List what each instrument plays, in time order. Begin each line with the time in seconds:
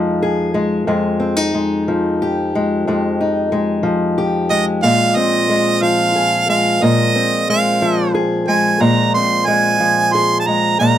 Already playing: steel-string acoustic guitar F2 F3 G#3 D#4 G#4
0.22 steel-string acoustic guitar G#4
0.54 steel-string acoustic guitar G#3
0.87 steel-string acoustic guitar F2 G#3
1.20 steel-string acoustic guitar C4
1.37 steel-string acoustic guitar D#4
1.54 steel-string acoustic guitar G#3
1.88 steel-string acoustic guitar F3
2.22 steel-string acoustic guitar G4
2.55 steel-string acoustic guitar G#3
2.87 steel-string acoustic guitar F2 G#3
3.21 steel-string acoustic guitar D#4
3.52 steel-string acoustic guitar G#3
3.83 steel-string acoustic guitar F3
4.18 steel-string acoustic guitar G4
4.50 steel-string acoustic guitar G#3, harmonica D#5
4.83 steel-string acoustic guitar A#2 G#3, harmonica F5
5.16 steel-string acoustic guitar C4, harmonica D#5
5.49 steel-string acoustic guitar G#3
5.82 steel-string acoustic guitar F3, harmonica F5
6.15 steel-string acoustic guitar G#4
6.49 steel-string acoustic guitar G#3, harmonica F5
6.82 steel-string acoustic guitar A#2 G#3, harmonica D#5
7.15 steel-string acoustic guitar C4
7.50 steel-string acoustic guitar G#3, harmonica F5
7.82 steel-string acoustic guitar F3
8.14 steel-string acoustic guitar G#4
8.48 steel-string acoustic guitar G#3, harmonica G#5
8.80 steel-string acoustic guitar A#2 G#3, harmonica A#5
9.14 steel-string acoustic guitar C4, harmonica C6
9.46 steel-string acoustic guitar G#3, harmonica G#5
9.80 steel-string acoustic guitar F3
10.12 steel-string acoustic guitar G#4, harmonica C6
10.40 harmonica A5
10.47 steel-string acoustic guitar G#3, harmonica A#5
10.80 steel-string acoustic guitar A#2 G#3, harmonica A#5